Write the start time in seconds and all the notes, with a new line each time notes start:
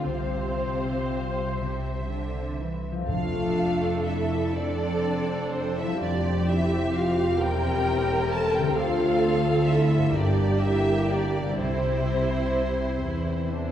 Already playing: C4 F4
0.04 C2 C3 C4 C5 F5
0.59 C4
1.10 C4 F4
1.59 C3 E5
2.10 D3 C4
2.59 E3 C4 E4
2.92 F3
2.96 A3
3.01 C4
3.05 F1 F2 A3 F4 A4
3.09 F2 D4 F5
4.05 E4 E5
4.54 C4 D4 D5
5.52 C4 C5
5.76 E4 E5
5.83 F3
5.87 G3
5.92 C4
5.96 F1 F2 C4 D4 G4 C5
6.01 D5
6.47 E4 E5
6.94 F4 F5
7.37 E1 E2 E4 G4 A#4 G5
8.31 A4 A5
8.54 G4 G5
8.58 D3
8.62 A3
8.67 D4
8.72 D2 F4 C5 F5
8.76 F4 A4
9.67 E4 E5
9.97 G2
10.01 G3
10.05 D4
10.10 G1 G2 A#3 D4 G4 A#4
10.15 D5
10.62 E4 E5
11.10 D4 D5
11.40 C3
11.45 G3
11.49 E4
11.54 C2 C3 C4 E4 C5
11.58 C4 C5
13.02 E2 E3 E4
13.53 D4